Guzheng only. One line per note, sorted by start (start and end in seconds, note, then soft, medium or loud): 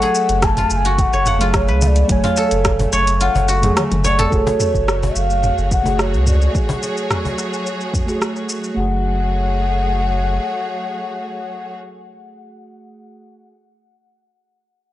0.00 0.64 F#4 medium
0.00 2.30 G#4 loud
0.00 1.13 C#5 loud
0.58 0.91 F4 medium
0.85 1.47 F#4 medium
1.13 2.92 C#5 medium
1.27 1.47 F#5 medium
1.41 2.23 F4 medium
1.68 3.73 B4 medium
2.24 3.20 F4 medium
2.37 4.18 A4 medium
2.93 4.04 C#5 loud
3.21 3.54 F4 medium
3.48 5.92 F#4 medium
4.04 5.96 C#5 medium
4.19 6.38 A4 loud